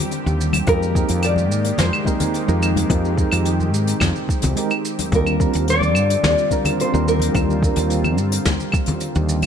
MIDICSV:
0, 0, Header, 1, 6, 480
1, 0, Start_track
1, 0, Key_signature, -3, "major"
1, 0, Tempo, 555556
1, 588, Time_signature, 4, 2, 24, 8
1, 8173, End_track
2, 0, Start_track
2, 0, Title_t, "Nylon-string guitar"
2, 0, Program_c, 0, 24
2, 595, Note_on_c, 0, 70, 104
2, 1073, Note_off_c, 0, 70, 0
2, 1077, Note_on_c, 0, 74, 119
2, 1519, Note_off_c, 0, 74, 0
2, 1555, Note_on_c, 0, 72, 91
2, 3917, Note_off_c, 0, 72, 0
2, 4451, Note_on_c, 0, 70, 98
2, 4887, Note_off_c, 0, 70, 0
2, 4925, Note_on_c, 0, 74, 114
2, 5391, Note_off_c, 0, 74, 0
2, 5401, Note_on_c, 0, 74, 105
2, 5882, Note_off_c, 0, 74, 0
2, 5885, Note_on_c, 0, 72, 94
2, 6115, Note_off_c, 0, 72, 0
2, 6119, Note_on_c, 0, 70, 84
2, 7519, Note_off_c, 0, 70, 0
2, 8173, End_track
3, 0, Start_track
3, 0, Title_t, "Synth keys"
3, 0, Program_c, 1, 88
3, 0, Note_on_c, 1, 55, 77
3, 0, Note_on_c, 1, 60, 73
3, 0, Note_on_c, 1, 62, 68
3, 0, Note_on_c, 1, 65, 70
3, 0, Note_on_c, 1, 70, 80
3, 544, Note_off_c, 1, 55, 0
3, 550, Note_off_c, 1, 60, 0
3, 556, Note_off_c, 1, 62, 0
3, 562, Note_off_c, 1, 65, 0
3, 569, Note_off_c, 1, 70, 0
3, 576, Note_on_c, 1, 56, 80
3, 579, Note_on_c, 1, 60, 75
3, 586, Note_on_c, 1, 63, 68
3, 591, Note_on_c, 1, 67, 70
3, 597, Note_on_c, 1, 70, 87
3, 794, Note_off_c, 1, 56, 0
3, 795, Note_off_c, 1, 60, 0
3, 799, Note_off_c, 1, 63, 0
3, 801, Note_off_c, 1, 67, 0
3, 804, Note_off_c, 1, 70, 0
3, 814, Note_on_c, 1, 56, 97
3, 821, Note_on_c, 1, 60, 87
3, 827, Note_on_c, 1, 63, 89
3, 834, Note_on_c, 1, 67, 82
3, 838, Note_on_c, 1, 70, 103
3, 1032, Note_off_c, 1, 56, 0
3, 1036, Note_off_c, 1, 60, 0
3, 1039, Note_off_c, 1, 63, 0
3, 1042, Note_off_c, 1, 67, 0
3, 1044, Note_off_c, 1, 70, 0
3, 1768, Note_on_c, 1, 56, 87
3, 1768, Note_on_c, 1, 60, 81
3, 1774, Note_on_c, 1, 63, 74
3, 1783, Note_on_c, 1, 67, 80
3, 1791, Note_on_c, 1, 70, 97
3, 2111, Note_off_c, 1, 56, 0
3, 2111, Note_off_c, 1, 60, 0
3, 2114, Note_off_c, 1, 63, 0
3, 2118, Note_off_c, 1, 67, 0
3, 2122, Note_off_c, 1, 70, 0
3, 2132, Note_on_c, 1, 56, 79
3, 2140, Note_on_c, 1, 60, 71
3, 2141, Note_on_c, 1, 63, 77
3, 2147, Note_on_c, 1, 67, 71
3, 2151, Note_on_c, 1, 70, 94
3, 2471, Note_off_c, 1, 56, 0
3, 2475, Note_off_c, 1, 60, 0
3, 2475, Note_off_c, 1, 63, 0
3, 2478, Note_off_c, 1, 67, 0
3, 2480, Note_off_c, 1, 70, 0
3, 2500, Note_on_c, 1, 56, 89
3, 2502, Note_on_c, 1, 60, 76
3, 2510, Note_on_c, 1, 63, 80
3, 2515, Note_on_c, 1, 67, 74
3, 2521, Note_on_c, 1, 70, 93
3, 2709, Note_off_c, 1, 56, 0
3, 2710, Note_off_c, 1, 60, 0
3, 2714, Note_off_c, 1, 63, 0
3, 2716, Note_off_c, 1, 67, 0
3, 2719, Note_off_c, 1, 70, 0
3, 2725, Note_on_c, 1, 56, 77
3, 2736, Note_on_c, 1, 60, 68
3, 2749, Note_on_c, 1, 63, 73
3, 2759, Note_on_c, 1, 67, 71
3, 2770, Note_on_c, 1, 70, 81
3, 3913, Note_off_c, 1, 56, 0
3, 3918, Note_off_c, 1, 60, 0
3, 3925, Note_off_c, 1, 63, 0
3, 3930, Note_off_c, 1, 67, 0
3, 3935, Note_off_c, 1, 70, 0
3, 3936, Note_on_c, 1, 56, 81
3, 3939, Note_on_c, 1, 60, 73
3, 3949, Note_on_c, 1, 63, 71
3, 3953, Note_on_c, 1, 67, 73
3, 3958, Note_on_c, 1, 70, 87
3, 4076, Note_off_c, 1, 56, 0
3, 4077, Note_off_c, 1, 60, 0
3, 4082, Note_off_c, 1, 63, 0
3, 4084, Note_off_c, 1, 67, 0
3, 4086, Note_off_c, 1, 70, 0
3, 4422, Note_on_c, 1, 55, 77
3, 4431, Note_on_c, 1, 60, 71
3, 4435, Note_on_c, 1, 62, 70
3, 4437, Note_on_c, 1, 65, 71
3, 4446, Note_on_c, 1, 70, 88
3, 4637, Note_off_c, 1, 55, 0
3, 4641, Note_off_c, 1, 60, 0
3, 4643, Note_off_c, 1, 62, 0
3, 4644, Note_off_c, 1, 65, 0
3, 4649, Note_off_c, 1, 70, 0
3, 4655, Note_on_c, 1, 55, 88
3, 4663, Note_on_c, 1, 60, 89
3, 4666, Note_on_c, 1, 62, 85
3, 4671, Note_on_c, 1, 65, 83
3, 4678, Note_on_c, 1, 70, 107
3, 4873, Note_off_c, 1, 55, 0
3, 4877, Note_off_c, 1, 60, 0
3, 4878, Note_off_c, 1, 62, 0
3, 4881, Note_off_c, 1, 65, 0
3, 4885, Note_off_c, 1, 70, 0
3, 5615, Note_on_c, 1, 55, 83
3, 5623, Note_on_c, 1, 60, 79
3, 5626, Note_on_c, 1, 62, 74
3, 5633, Note_on_c, 1, 65, 76
3, 5637, Note_on_c, 1, 70, 93
3, 5954, Note_off_c, 1, 55, 0
3, 5958, Note_off_c, 1, 60, 0
3, 5960, Note_off_c, 1, 62, 0
3, 5963, Note_off_c, 1, 65, 0
3, 5965, Note_off_c, 1, 70, 0
3, 5978, Note_on_c, 1, 55, 83
3, 5982, Note_on_c, 1, 60, 74
3, 5989, Note_on_c, 1, 62, 77
3, 5994, Note_on_c, 1, 65, 77
3, 5997, Note_on_c, 1, 70, 91
3, 6314, Note_off_c, 1, 55, 0
3, 6316, Note_off_c, 1, 60, 0
3, 6319, Note_off_c, 1, 62, 0
3, 6322, Note_off_c, 1, 65, 0
3, 6323, Note_off_c, 1, 70, 0
3, 6329, Note_on_c, 1, 55, 82
3, 6342, Note_on_c, 1, 60, 73
3, 6343, Note_on_c, 1, 62, 78
3, 6352, Note_on_c, 1, 65, 78
3, 6356, Note_on_c, 1, 70, 90
3, 6543, Note_off_c, 1, 55, 0
3, 6550, Note_off_c, 1, 60, 0
3, 6550, Note_off_c, 1, 62, 0
3, 6555, Note_off_c, 1, 65, 0
3, 6557, Note_off_c, 1, 70, 0
3, 6562, Note_on_c, 1, 55, 75
3, 6571, Note_on_c, 1, 60, 66
3, 6582, Note_on_c, 1, 62, 71
3, 6593, Note_on_c, 1, 65, 72
3, 6609, Note_on_c, 1, 70, 80
3, 8173, Note_off_c, 1, 55, 0
3, 8173, Note_off_c, 1, 60, 0
3, 8173, Note_off_c, 1, 62, 0
3, 8173, Note_off_c, 1, 65, 0
3, 8173, Note_off_c, 1, 70, 0
3, 8173, End_track
4, 0, Start_track
4, 0, Title_t, "Analog synth pad"
4, 0, Program_c, 2, 89
4, 0, Note_on_c, 2, 50, 79
4, 0, Note_on_c, 2, 55, 72
4, 0, Note_on_c, 2, 60, 73
4, 0, Note_on_c, 2, 67, 89
4, 556, Note_off_c, 2, 55, 0
4, 556, Note_off_c, 2, 60, 0
4, 558, Note_off_c, 2, 50, 0
4, 567, Note_off_c, 2, 67, 0
4, 582, Note_on_c, 2, 58, 75
4, 583, Note_on_c, 2, 67, 92
4, 586, Note_on_c, 2, 56, 78
4, 588, Note_on_c, 2, 51, 82
4, 2486, Note_off_c, 2, 58, 0
4, 2512, Note_on_c, 2, 60, 76
4, 4391, Note_off_c, 2, 67, 0
4, 4393, Note_off_c, 2, 51, 0
4, 4393, Note_off_c, 2, 56, 0
4, 4424, Note_on_c, 2, 55, 74
4, 4427, Note_on_c, 2, 50, 81
4, 4427, Note_on_c, 2, 65, 91
4, 8173, Note_off_c, 2, 50, 0
4, 8173, Note_off_c, 2, 55, 0
4, 8173, Note_off_c, 2, 60, 0
4, 8173, Note_off_c, 2, 65, 0
4, 8173, End_track
5, 0, Start_track
5, 0, Title_t, "Fretless electric bass"
5, 0, Program_c, 3, 35
5, 227, Note_on_c, 3, 39, 76
5, 527, Note_off_c, 3, 39, 0
5, 582, Note_on_c, 3, 41, 106
5, 885, Note_off_c, 3, 41, 0
5, 946, Note_on_c, 3, 41, 89
5, 1307, Note_off_c, 3, 41, 0
5, 1307, Note_on_c, 3, 44, 93
5, 1473, Note_off_c, 3, 44, 0
5, 1544, Note_on_c, 3, 41, 83
5, 1630, Note_off_c, 3, 41, 0
5, 2145, Note_on_c, 3, 41, 80
5, 2446, Note_off_c, 3, 41, 0
5, 2506, Note_on_c, 3, 41, 99
5, 2807, Note_off_c, 3, 41, 0
5, 2872, Note_on_c, 3, 41, 91
5, 3227, Note_off_c, 3, 41, 0
5, 3227, Note_on_c, 3, 44, 88
5, 3393, Note_off_c, 3, 44, 0
5, 3466, Note_on_c, 3, 41, 90
5, 3550, Note_off_c, 3, 41, 0
5, 3834, Note_on_c, 3, 36, 97
5, 3913, Note_off_c, 3, 36, 0
5, 4424, Note_on_c, 3, 39, 98
5, 4727, Note_off_c, 3, 39, 0
5, 4795, Note_on_c, 3, 39, 86
5, 5151, Note_off_c, 3, 39, 0
5, 5151, Note_on_c, 3, 43, 85
5, 5315, Note_off_c, 3, 43, 0
5, 5391, Note_on_c, 3, 39, 87
5, 5473, Note_off_c, 3, 39, 0
5, 5993, Note_on_c, 3, 39, 76
5, 6290, Note_off_c, 3, 39, 0
5, 6348, Note_on_c, 3, 39, 102
5, 6648, Note_off_c, 3, 39, 0
5, 6711, Note_on_c, 3, 39, 88
5, 7071, Note_off_c, 3, 39, 0
5, 7071, Note_on_c, 3, 43, 93
5, 7235, Note_off_c, 3, 43, 0
5, 7310, Note_on_c, 3, 39, 82
5, 7392, Note_off_c, 3, 39, 0
5, 7911, Note_on_c, 3, 39, 86
5, 8173, Note_off_c, 3, 39, 0
5, 8173, End_track
6, 0, Start_track
6, 0, Title_t, "Drums"
6, 97, Note_on_c, 9, 42, 52
6, 104, Note_on_c, 9, 82, 59
6, 184, Note_off_c, 9, 42, 0
6, 191, Note_off_c, 9, 82, 0
6, 232, Note_on_c, 9, 82, 41
6, 318, Note_off_c, 9, 82, 0
6, 352, Note_on_c, 9, 82, 75
6, 438, Note_off_c, 9, 82, 0
6, 457, Note_on_c, 9, 63, 90
6, 460, Note_on_c, 9, 75, 83
6, 465, Note_on_c, 9, 42, 71
6, 470, Note_on_c, 9, 82, 46
6, 543, Note_off_c, 9, 63, 0
6, 546, Note_off_c, 9, 75, 0
6, 551, Note_off_c, 9, 42, 0
6, 557, Note_off_c, 9, 82, 0
6, 576, Note_on_c, 9, 42, 61
6, 582, Note_on_c, 9, 36, 116
6, 585, Note_on_c, 9, 82, 59
6, 662, Note_off_c, 9, 42, 0
6, 669, Note_off_c, 9, 36, 0
6, 672, Note_off_c, 9, 82, 0
6, 714, Note_on_c, 9, 82, 43
6, 800, Note_off_c, 9, 82, 0
6, 823, Note_on_c, 9, 36, 97
6, 830, Note_on_c, 9, 82, 86
6, 909, Note_off_c, 9, 36, 0
6, 916, Note_off_c, 9, 82, 0
6, 937, Note_on_c, 9, 42, 70
6, 951, Note_on_c, 9, 82, 48
6, 1024, Note_off_c, 9, 42, 0
6, 1037, Note_off_c, 9, 82, 0
6, 1059, Note_on_c, 9, 42, 62
6, 1061, Note_on_c, 9, 75, 77
6, 1071, Note_on_c, 9, 82, 57
6, 1145, Note_off_c, 9, 42, 0
6, 1147, Note_off_c, 9, 75, 0
6, 1158, Note_off_c, 9, 82, 0
6, 1175, Note_on_c, 9, 63, 82
6, 1191, Note_on_c, 9, 82, 37
6, 1262, Note_off_c, 9, 63, 0
6, 1278, Note_off_c, 9, 82, 0
6, 1310, Note_on_c, 9, 82, 73
6, 1396, Note_off_c, 9, 82, 0
6, 1422, Note_on_c, 9, 42, 70
6, 1435, Note_on_c, 9, 82, 44
6, 1509, Note_off_c, 9, 42, 0
6, 1522, Note_off_c, 9, 82, 0
6, 1538, Note_on_c, 9, 64, 92
6, 1541, Note_on_c, 9, 42, 62
6, 1543, Note_on_c, 9, 38, 79
6, 1553, Note_on_c, 9, 82, 59
6, 1624, Note_off_c, 9, 64, 0
6, 1628, Note_off_c, 9, 42, 0
6, 1630, Note_off_c, 9, 38, 0
6, 1639, Note_off_c, 9, 82, 0
6, 1668, Note_on_c, 9, 75, 88
6, 1679, Note_on_c, 9, 82, 39
6, 1755, Note_off_c, 9, 75, 0
6, 1766, Note_off_c, 9, 82, 0
6, 1771, Note_on_c, 9, 63, 67
6, 1784, Note_on_c, 9, 36, 56
6, 1790, Note_on_c, 9, 82, 79
6, 1858, Note_off_c, 9, 63, 0
6, 1870, Note_off_c, 9, 36, 0
6, 1876, Note_off_c, 9, 82, 0
6, 1901, Note_on_c, 9, 42, 72
6, 1904, Note_on_c, 9, 64, 87
6, 1910, Note_on_c, 9, 82, 52
6, 1988, Note_off_c, 9, 42, 0
6, 1990, Note_off_c, 9, 64, 0
6, 1996, Note_off_c, 9, 82, 0
6, 2022, Note_on_c, 9, 42, 51
6, 2031, Note_on_c, 9, 82, 51
6, 2109, Note_off_c, 9, 42, 0
6, 2118, Note_off_c, 9, 82, 0
6, 2147, Note_on_c, 9, 82, 42
6, 2234, Note_off_c, 9, 82, 0
6, 2268, Note_on_c, 9, 82, 87
6, 2270, Note_on_c, 9, 75, 84
6, 2355, Note_off_c, 9, 82, 0
6, 2356, Note_off_c, 9, 75, 0
6, 2388, Note_on_c, 9, 63, 99
6, 2393, Note_on_c, 9, 42, 69
6, 2395, Note_on_c, 9, 82, 45
6, 2474, Note_off_c, 9, 63, 0
6, 2479, Note_off_c, 9, 42, 0
6, 2481, Note_off_c, 9, 82, 0
6, 2503, Note_on_c, 9, 42, 64
6, 2504, Note_on_c, 9, 36, 126
6, 2512, Note_on_c, 9, 82, 55
6, 2589, Note_off_c, 9, 42, 0
6, 2590, Note_off_c, 9, 36, 0
6, 2598, Note_off_c, 9, 82, 0
6, 2634, Note_on_c, 9, 82, 41
6, 2720, Note_off_c, 9, 82, 0
6, 2744, Note_on_c, 9, 36, 102
6, 2749, Note_on_c, 9, 82, 73
6, 2830, Note_off_c, 9, 36, 0
6, 2835, Note_off_c, 9, 82, 0
6, 2865, Note_on_c, 9, 75, 84
6, 2869, Note_on_c, 9, 42, 68
6, 2874, Note_on_c, 9, 82, 53
6, 2951, Note_off_c, 9, 75, 0
6, 2955, Note_off_c, 9, 42, 0
6, 2960, Note_off_c, 9, 82, 0
6, 2983, Note_on_c, 9, 42, 54
6, 2988, Note_on_c, 9, 82, 53
6, 3070, Note_off_c, 9, 42, 0
6, 3074, Note_off_c, 9, 82, 0
6, 3109, Note_on_c, 9, 63, 82
6, 3113, Note_on_c, 9, 82, 38
6, 3195, Note_off_c, 9, 63, 0
6, 3200, Note_off_c, 9, 82, 0
6, 3232, Note_on_c, 9, 82, 88
6, 3318, Note_off_c, 9, 82, 0
6, 3347, Note_on_c, 9, 42, 66
6, 3362, Note_on_c, 9, 82, 53
6, 3434, Note_off_c, 9, 42, 0
6, 3448, Note_off_c, 9, 82, 0
6, 3458, Note_on_c, 9, 75, 78
6, 3462, Note_on_c, 9, 64, 98
6, 3465, Note_on_c, 9, 36, 56
6, 3466, Note_on_c, 9, 38, 78
6, 3468, Note_on_c, 9, 42, 55
6, 3472, Note_on_c, 9, 82, 56
6, 3544, Note_off_c, 9, 75, 0
6, 3548, Note_off_c, 9, 64, 0
6, 3552, Note_off_c, 9, 36, 0
6, 3552, Note_off_c, 9, 38, 0
6, 3555, Note_off_c, 9, 42, 0
6, 3558, Note_off_c, 9, 82, 0
6, 3592, Note_on_c, 9, 82, 35
6, 3678, Note_off_c, 9, 82, 0
6, 3697, Note_on_c, 9, 63, 59
6, 3705, Note_on_c, 9, 36, 100
6, 3716, Note_on_c, 9, 82, 87
6, 3783, Note_off_c, 9, 63, 0
6, 3792, Note_off_c, 9, 36, 0
6, 3803, Note_off_c, 9, 82, 0
6, 3819, Note_on_c, 9, 42, 81
6, 3830, Note_on_c, 9, 64, 91
6, 3832, Note_on_c, 9, 82, 55
6, 3906, Note_off_c, 9, 42, 0
6, 3916, Note_off_c, 9, 64, 0
6, 3919, Note_off_c, 9, 82, 0
6, 3945, Note_on_c, 9, 42, 63
6, 3948, Note_on_c, 9, 82, 54
6, 4031, Note_off_c, 9, 42, 0
6, 4034, Note_off_c, 9, 82, 0
6, 4065, Note_on_c, 9, 82, 37
6, 4069, Note_on_c, 9, 75, 77
6, 4152, Note_off_c, 9, 82, 0
6, 4156, Note_off_c, 9, 75, 0
6, 4190, Note_on_c, 9, 82, 88
6, 4277, Note_off_c, 9, 82, 0
6, 4309, Note_on_c, 9, 42, 78
6, 4313, Note_on_c, 9, 63, 90
6, 4317, Note_on_c, 9, 82, 48
6, 4395, Note_off_c, 9, 42, 0
6, 4399, Note_off_c, 9, 63, 0
6, 4404, Note_off_c, 9, 82, 0
6, 4424, Note_on_c, 9, 42, 61
6, 4425, Note_on_c, 9, 36, 127
6, 4439, Note_on_c, 9, 82, 60
6, 4511, Note_off_c, 9, 42, 0
6, 4512, Note_off_c, 9, 36, 0
6, 4525, Note_off_c, 9, 82, 0
6, 4549, Note_on_c, 9, 75, 82
6, 4550, Note_on_c, 9, 82, 45
6, 4635, Note_off_c, 9, 75, 0
6, 4636, Note_off_c, 9, 82, 0
6, 4665, Note_on_c, 9, 36, 102
6, 4671, Note_on_c, 9, 82, 78
6, 4752, Note_off_c, 9, 36, 0
6, 4757, Note_off_c, 9, 82, 0
6, 4782, Note_on_c, 9, 42, 69
6, 4799, Note_on_c, 9, 82, 55
6, 4868, Note_off_c, 9, 42, 0
6, 4886, Note_off_c, 9, 82, 0
6, 4907, Note_on_c, 9, 42, 61
6, 4920, Note_on_c, 9, 82, 62
6, 4993, Note_off_c, 9, 42, 0
6, 5007, Note_off_c, 9, 82, 0
6, 5023, Note_on_c, 9, 63, 90
6, 5036, Note_on_c, 9, 82, 42
6, 5109, Note_off_c, 9, 63, 0
6, 5122, Note_off_c, 9, 82, 0
6, 5140, Note_on_c, 9, 75, 79
6, 5150, Note_on_c, 9, 82, 89
6, 5227, Note_off_c, 9, 75, 0
6, 5236, Note_off_c, 9, 82, 0
6, 5272, Note_on_c, 9, 42, 77
6, 5276, Note_on_c, 9, 82, 50
6, 5359, Note_off_c, 9, 42, 0
6, 5363, Note_off_c, 9, 82, 0
6, 5388, Note_on_c, 9, 64, 104
6, 5390, Note_on_c, 9, 42, 58
6, 5391, Note_on_c, 9, 38, 86
6, 5392, Note_on_c, 9, 82, 54
6, 5474, Note_off_c, 9, 64, 0
6, 5477, Note_off_c, 9, 42, 0
6, 5478, Note_off_c, 9, 38, 0
6, 5478, Note_off_c, 9, 82, 0
6, 5513, Note_on_c, 9, 82, 44
6, 5599, Note_off_c, 9, 82, 0
6, 5624, Note_on_c, 9, 63, 64
6, 5626, Note_on_c, 9, 36, 60
6, 5627, Note_on_c, 9, 82, 88
6, 5710, Note_off_c, 9, 63, 0
6, 5712, Note_off_c, 9, 36, 0
6, 5714, Note_off_c, 9, 82, 0
6, 5745, Note_on_c, 9, 64, 93
6, 5746, Note_on_c, 9, 42, 80
6, 5751, Note_on_c, 9, 75, 88
6, 5751, Note_on_c, 9, 82, 54
6, 5831, Note_off_c, 9, 64, 0
6, 5833, Note_off_c, 9, 42, 0
6, 5837, Note_off_c, 9, 82, 0
6, 5838, Note_off_c, 9, 75, 0
6, 5874, Note_on_c, 9, 42, 60
6, 5878, Note_on_c, 9, 82, 61
6, 5960, Note_off_c, 9, 42, 0
6, 5965, Note_off_c, 9, 82, 0
6, 6000, Note_on_c, 9, 82, 44
6, 6086, Note_off_c, 9, 82, 0
6, 6118, Note_on_c, 9, 82, 78
6, 6204, Note_off_c, 9, 82, 0
6, 6218, Note_on_c, 9, 63, 104
6, 6234, Note_on_c, 9, 42, 76
6, 6238, Note_on_c, 9, 82, 53
6, 6305, Note_off_c, 9, 63, 0
6, 6321, Note_off_c, 9, 42, 0
6, 6324, Note_off_c, 9, 82, 0
6, 6346, Note_on_c, 9, 42, 54
6, 6347, Note_on_c, 9, 36, 127
6, 6353, Note_on_c, 9, 75, 73
6, 6361, Note_on_c, 9, 82, 64
6, 6432, Note_off_c, 9, 42, 0
6, 6434, Note_off_c, 9, 36, 0
6, 6439, Note_off_c, 9, 75, 0
6, 6447, Note_off_c, 9, 82, 0
6, 6482, Note_on_c, 9, 82, 40
6, 6569, Note_off_c, 9, 82, 0
6, 6588, Note_on_c, 9, 36, 113
6, 6600, Note_on_c, 9, 82, 87
6, 6675, Note_off_c, 9, 36, 0
6, 6686, Note_off_c, 9, 82, 0
6, 6704, Note_on_c, 9, 42, 76
6, 6726, Note_on_c, 9, 82, 52
6, 6791, Note_off_c, 9, 42, 0
6, 6812, Note_off_c, 9, 82, 0
6, 6826, Note_on_c, 9, 42, 58
6, 6837, Note_on_c, 9, 82, 55
6, 6912, Note_off_c, 9, 42, 0
6, 6923, Note_off_c, 9, 82, 0
6, 6948, Note_on_c, 9, 63, 96
6, 6951, Note_on_c, 9, 75, 67
6, 6952, Note_on_c, 9, 82, 35
6, 7035, Note_off_c, 9, 63, 0
6, 7037, Note_off_c, 9, 75, 0
6, 7038, Note_off_c, 9, 82, 0
6, 7067, Note_on_c, 9, 82, 82
6, 7153, Note_off_c, 9, 82, 0
6, 7188, Note_on_c, 9, 42, 75
6, 7196, Note_on_c, 9, 82, 54
6, 7275, Note_off_c, 9, 42, 0
6, 7282, Note_off_c, 9, 82, 0
6, 7303, Note_on_c, 9, 42, 65
6, 7305, Note_on_c, 9, 38, 81
6, 7308, Note_on_c, 9, 64, 100
6, 7309, Note_on_c, 9, 36, 62
6, 7310, Note_on_c, 9, 82, 66
6, 7390, Note_off_c, 9, 42, 0
6, 7391, Note_off_c, 9, 38, 0
6, 7394, Note_off_c, 9, 64, 0
6, 7395, Note_off_c, 9, 36, 0
6, 7397, Note_off_c, 9, 82, 0
6, 7430, Note_on_c, 9, 82, 42
6, 7516, Note_off_c, 9, 82, 0
6, 7536, Note_on_c, 9, 75, 78
6, 7546, Note_on_c, 9, 63, 66
6, 7548, Note_on_c, 9, 36, 108
6, 7551, Note_on_c, 9, 82, 91
6, 7622, Note_off_c, 9, 75, 0
6, 7633, Note_off_c, 9, 63, 0
6, 7634, Note_off_c, 9, 36, 0
6, 7638, Note_off_c, 9, 82, 0
6, 7656, Note_on_c, 9, 42, 68
6, 7670, Note_on_c, 9, 64, 95
6, 7670, Note_on_c, 9, 82, 58
6, 7742, Note_off_c, 9, 42, 0
6, 7756, Note_off_c, 9, 82, 0
6, 7757, Note_off_c, 9, 64, 0
6, 7778, Note_on_c, 9, 42, 53
6, 7781, Note_on_c, 9, 82, 58
6, 7865, Note_off_c, 9, 42, 0
6, 7867, Note_off_c, 9, 82, 0
6, 7908, Note_on_c, 9, 82, 47
6, 7995, Note_off_c, 9, 82, 0
6, 8026, Note_on_c, 9, 82, 92
6, 8112, Note_off_c, 9, 82, 0
6, 8141, Note_on_c, 9, 42, 70
6, 8147, Note_on_c, 9, 75, 79
6, 8173, Note_off_c, 9, 42, 0
6, 8173, Note_off_c, 9, 75, 0
6, 8173, End_track
0, 0, End_of_file